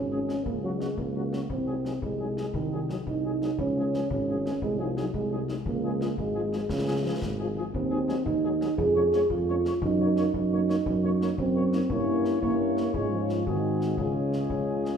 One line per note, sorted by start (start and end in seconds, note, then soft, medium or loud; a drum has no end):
0.00 0.37 G#1 soft
0.00 0.46 C#4 medium
0.11 0.19 F3 soft
0.11 0.19 G#3 soft
0.11 0.19 C#4 soft
0.11 0.17 G#4 soft
0.28 0.35 F3 soft
0.28 0.35 G#3 soft
0.28 0.35 C#4 soft
0.28 0.34 G#4 soft
0.28 snare soft
0.44 0.90 C#2 soft
0.44 0.61 A#3 medium
0.44 concert bass drum medium
0.61 0.80 F#3 medium
0.61 0.70 F#3 soft
0.61 0.70 A#3 soft
0.61 0.70 C#4 soft
0.61 0.70 F#4 soft
0.79 0.87 F#3 soft
0.79 0.99 G#3 medium
0.79 0.88 A#3 soft
0.79 0.87 C#4 soft
0.79 0.86 F#4 soft
0.79 snare soft
0.97 1.42 C#2 soft
0.97 1.50 A#3 medium
0.97 concert bass drum soft
1.15 1.22 F#3 soft
1.15 1.22 A#3 soft
1.15 1.22 C#4 soft
1.15 1.22 F#4 soft
1.32 1.39 F#3 soft
1.32 1.39 A#3 soft
1.32 1.39 C#4 soft
1.32 1.39 F#4 soft
1.32 snare soft
1.50 1.94 C2 soft
1.50 1.99 C4 medium
1.50 concert bass drum medium
1.67 1.74 F#3 soft
1.67 1.74 G#3 soft
1.67 1.74 D#4 soft
1.67 1.73 G#4 soft
1.85 1.92 F#3 soft
1.85 1.92 G#3 soft
1.85 1.92 D#4 soft
1.85 1.92 G#4 soft
1.85 snare soft
2.02 2.46 C2 soft
2.02 2.51 G#3 medium
2.02 concert bass drum medium
2.20 2.26 F#3 soft
2.20 2.26 G#3 soft
2.20 2.26 D#4 soft
2.20 2.26 G#4 soft
2.37 2.43 F#3 soft
2.37 2.44 G#3 soft
2.37 2.44 D#4 soft
2.37 2.44 G#4 soft
2.37 snare soft
2.54 2.94 C2 soft
2.54 2.86 D#3 medium
2.54 concert bass drum medium
2.72 2.78 F#3 soft
2.72 2.78 G#3 soft
2.72 2.79 D#4 soft
2.72 2.79 G#4 soft
2.89 2.97 F#3 medium
2.89 2.96 F#3 soft
2.89 2.96 G#3 soft
2.89 2.96 D#4 soft
2.89 2.96 G#4 soft
2.89 snare soft
3.07 3.50 C2 soft
3.07 3.56 D#4 medium
3.07 concert bass drum medium
3.24 3.31 F#3 soft
3.24 3.30 G#3 soft
3.24 3.30 D#4 soft
3.24 3.31 G#4 soft
3.42 3.48 F#3 soft
3.42 3.48 G#3 soft
3.42 3.48 D#4 soft
3.42 3.49 G#4 soft
3.42 snare soft
3.58 4.02 C#2 medium
3.58 4.07 C#4 medium
3.58 concert bass drum medium
3.76 3.83 F3 soft
3.76 3.83 G#3 soft
3.76 3.83 C#4 soft
3.76 3.84 G#4 soft
3.94 4.00 F3 soft
3.94 4.00 G#3 soft
3.94 4.00 C#4 soft
3.94 4.01 G#4 soft
3.94 snare soft
4.10 4.54 G#1 soft
4.10 4.59 C#4 medium
4.10 concert bass drum medium
4.28 4.35 F3 soft
4.28 4.35 G#3 soft
4.28 4.35 C#4 soft
4.28 4.35 G#4 soft
4.46 4.52 F3 soft
4.46 4.52 G#3 soft
4.46 4.52 C#4 soft
4.46 4.52 G#4 soft
4.46 snare soft
4.62 5.06 C2 medium
4.62 4.81 G#3 medium
4.62 concert bass drum medium
4.79 4.99 F3 medium
4.79 4.87 F#3 soft
4.79 4.87 G#3 soft
4.79 4.87 D#4 soft
4.79 4.86 G#4 soft
4.97 5.04 F#3 soft
4.97 5.13 F#3 medium
4.97 5.04 G#3 soft
4.97 5.03 D#4 soft
4.97 5.03 G#4 soft
4.97 snare soft
5.14 5.58 C2 soft
5.14 5.46 G#3 medium
5.14 concert bass drum medium
5.31 5.38 F#3 soft
5.31 5.39 G#3 soft
5.31 5.38 D#4 soft
5.31 5.38 G#4 soft
5.48 5.56 F#3 soft
5.48 5.56 G#3 soft
5.48 5.55 D#4 soft
5.48 5.56 G#4 soft
5.48 snare soft
5.66 6.10 C#2 medium
5.66 6.15 A#3 medium
5.66 concert bass drum medium
5.84 5.90 F3 soft
5.84 5.90 G#3 soft
5.84 5.90 F4 soft
5.84 5.91 G#4 soft
6.01 6.07 F3 soft
6.01 6.07 G#3 soft
6.01 6.07 F4 soft
6.01 6.08 G#4 soft
6.01 snare soft
6.18 6.62 G#1 soft
6.18 6.67 G#3 medium
6.18 concert bass drum medium
6.35 6.42 F3 soft
6.35 6.42 G#3 soft
6.35 6.42 F4 soft
6.35 6.42 G#4 soft
6.53 6.60 F3 soft
6.53 6.60 G#3 soft
6.53 6.60 F4 soft
6.53 6.60 G#4 soft
6.53 snare soft
6.69 7.13 C#2 medium
6.69 7.03 C#3 medium
6.69 concert bass drum medium
6.69 snare soft
6.87 6.94 F3 soft
6.87 6.94 G#3 soft
6.87 6.94 F4 soft
6.87 6.93 G#4 soft
7.04 7.21 F3 medium
7.04 7.11 F3 soft
7.04 7.11 G#3 soft
7.04 7.11 F4 soft
7.04 7.12 G#4 soft
7.22 7.66 G#1 medium
7.22 concert bass drum medium
7.22 snare soft
7.40 7.47 F3 soft
7.40 7.46 G#3 soft
7.40 7.46 F4 soft
7.40 7.46 G#4 soft
7.56 7.63 F3 soft
7.56 7.63 G#3 soft
7.56 7.63 F4 soft
7.56 7.63 G#4 soft
7.74 8.18 D#2 medium
7.74 8.23 C4 medium
7.74 concert bass drum medium
7.91 7.97 F#3 soft
7.91 7.98 G#3 soft
7.91 7.97 D#4 soft
7.91 7.97 G#4 soft
8.08 8.15 F#3 soft
8.08 8.15 G#3 soft
8.08 8.15 D#4 soft
8.08 8.15 G#4 soft
8.08 snare soft
8.25 8.70 D#2 medium
8.25 8.74 D#4 medium
8.25 concert bass drum medium
8.43 8.51 F#3 soft
8.43 8.51 G#3 soft
8.43 8.50 D#4 soft
8.43 8.49 G#4 soft
8.61 8.68 F#3 soft
8.61 8.68 G#3 soft
8.61 8.68 D#4 soft
8.61 8.67 G#4 soft
8.61 snare soft
8.78 9.22 F2 medium
8.78 9.27 G#4 medium
8.78 concert bass drum medium
8.95 9.02 F3 soft
8.95 9.02 G#3 soft
8.95 9.02 C#4 soft
8.95 9.01 C#5 soft
9.13 9.20 F3 soft
9.13 9.20 G#3 medium
9.13 9.20 C#4 soft
9.13 9.20 C#5 soft
9.13 snare soft
9.30 9.70 F2 medium
9.30 9.78 F4 medium
9.30 concert bass drum medium
9.49 9.55 F3 soft
9.49 9.55 G#3 soft
9.49 9.55 C#4 soft
9.49 9.55 C#5 soft
9.65 9.72 F3 soft
9.65 9.73 G#3 soft
9.65 9.72 C#4 soft
9.65 9.72 C#5 soft
9.65 snare soft
9.82 10.26 F#2 medium
9.82 10.31 D#4 medium
9.82 concert bass drum medium
10.00 10.08 A#3 soft
10.00 10.08 D#4 soft
10.00 10.06 C#5 soft
10.16 10.25 A#3 soft
10.16 10.25 D#4 medium
10.16 10.24 C#5 soft
10.16 snare soft
10.34 10.78 F#2 medium
10.34 11.35 D#4 medium
10.34 concert bass drum medium
10.52 10.59 A#3 soft
10.52 10.59 D#4 soft
10.52 10.59 C#5 soft
10.68 10.75 A#3 soft
10.68 10.75 D#4 soft
10.68 10.75 C#5 soft
10.68 snare soft
10.86 11.30 F#2 medium
10.86 concert bass drum medium
11.04 11.11 A#3 soft
11.04 11.10 D#4 soft
11.04 11.11 C#5 soft
11.21 11.28 A#3 soft
11.21 11.28 D#4 soft
11.21 11.28 C#5 soft
11.21 snare soft
11.38 11.82 F#2 medium
11.38 11.92 C4 medium
11.38 concert bass drum medium
11.55 11.62 A#3 soft
11.55 11.62 D#4 soft
11.55 11.63 C#5 soft
11.73 11.80 A#3 soft
11.73 11.80 D#4 soft
11.73 11.79 C#5 soft
11.73 snare soft
11.90 12.37 G2 medium
11.90 12.39 A#3 soft
11.90 12.41 A#3 medium
11.90 12.39 C#4 soft
11.90 12.39 E4 soft
11.90 12.39 C#5 medium
11.90 concert bass drum medium
12.25 snare soft
12.41 12.89 G2 medium
12.41 12.96 A#3 medium
12.41 12.91 A#3 soft
12.41 12.91 C#4 soft
12.41 12.91 E4 soft
12.41 12.90 C#5 soft
12.41 concert bass drum medium
12.77 snare soft
12.94 13.40 G#2 soft
12.94 13.11 G#3 medium
12.94 13.43 G#3 soft
12.94 13.43 C#4 soft
12.94 13.47 F4 soft
12.94 13.43 C#5 soft
12.94 concert bass drum medium
13.11 13.44 F3 medium
13.29 snare soft
13.46 13.92 G#2 soft
13.46 13.95 D#3 medium
13.46 13.95 G#3 soft
13.46 13.99 C4 soft
13.46 13.99 F#4 soft
13.46 13.98 G#4 soft
13.46 concert bass drum medium
13.81 snare soft
13.98 14.45 C#2 soft
13.98 14.97 C#3 medium
13.98 14.97 G#3 soft
13.98 14.97 C#4 soft
13.98 14.97 F4 soft
13.98 14.97 G#4 soft
13.98 concert bass drum medium
14.33 snare soft
14.50 14.96 C#2 soft
14.50 concert bass drum medium
14.85 snare soft